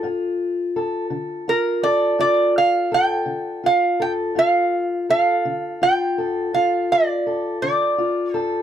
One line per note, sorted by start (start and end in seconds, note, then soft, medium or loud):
0.03 0.68 G2 medium
0.03 1.47 F4 medium
0.76 1.82 A4 medium
1.10 1.76 D3 medium
1.48 2.19 F4 medium
1.48 1.86 A#4 medium
1.83 2.91 A4 medium
1.83 2.19 D5 medium
2.19 2.84 G2 medium
2.19 3.63 F4 medium
2.19 2.54 D5 medium
2.58 2.94 F5 loud
2.92 3.99 A4 medium
2.92 3.67 G5 loud
3.26 3.92 D3 medium
3.64 4.36 F4 medium
3.64 4.02 F5 loud
4.00 4.38 A4 medium
4.00 4.11 G5 medium
4.35 5.00 G2 medium
4.35 5.81 F4 medium
4.35 5.05 F5 loud
5.09 6.18 A4 medium
5.09 5.83 F5 loud
5.45 6.10 D3 medium
5.82 6.54 F4 medium
5.82 6.50 G5 loud
6.18 7.26 A4 medium
6.53 7.18 G2 medium
6.53 7.98 F4 medium
6.53 6.90 F5 medium
6.92 7.58 D5 loud
7.26 8.34 A4 medium
7.62 8.26 D3 medium
7.62 8.34 D5 medium
7.98 8.62 F4 medium
8.34 8.62 A4 medium
8.34 8.62 C5 medium